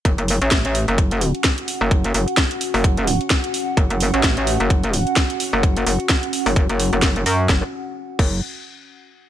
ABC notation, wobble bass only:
X:1
M:4/4
L:1/16
Q:"Swing 16ths" 1/4=129
K:F#m
V:1 name="Wobble bass" clef=bass
F,,, F,,,2 A,,,4 F,,,4 z4 F,,,- | F,,,2 F,,, z4 F,,,4 z4 z | F,,, F,,,2 A,,,4 F,,,4 z4 F,,,- | F,,,2 F,,, z4 F,,,2 F,,,2 F,,,3 F,,2 |
F,,, z4 z F,,,2 z8 |]